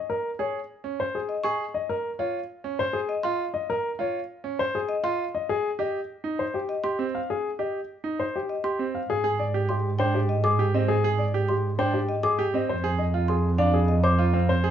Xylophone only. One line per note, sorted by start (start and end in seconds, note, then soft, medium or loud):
1.29 1.48 D#5 medium
1.44 1.63 C#6 medium
3.09 3.29 D#5 medium
3.23 3.43 C6 medium
4.89 5.08 D#5 medium
5.04 5.24 C6 medium
6.69 6.89 D#5 medium
6.84 7.03 C6 medium
8.49 8.69 D#5 soft
8.64 8.84 C6 medium
9.69 9.88 C6 medium
9.99 10.18 G5 medium
10.29 10.49 D#5 medium
10.44 10.63 D6 medium
11.49 11.68 C6 medium
11.79 11.98 G5 medium
12.09 12.28 D#5 medium
12.23 12.43 D6 medium
13.28 13.48 C6 medium
13.58 13.78 F5 medium
13.88 14.08 D#5 medium
14.04 14.23 D6 medium